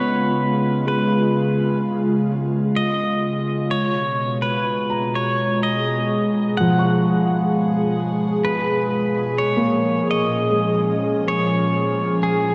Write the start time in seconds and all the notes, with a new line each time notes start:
Already playing: C#3 G#3 B3 F4 B4
0.85 G#3 B4
2.76 D#5
3.71 B2 C#5
4.22 G#3
4.42 B4
4.90 A#5
5.15 C#5
5.34 G#4
5.63 D#5
6.57 F3 F#5
6.79 C#6
8.45 B4
9.36 A#2 C#5
9.55 F3 A#3
10.11 D#5
10.25 C#4
10.50 G#3
11.28 C#5
12.23 G#4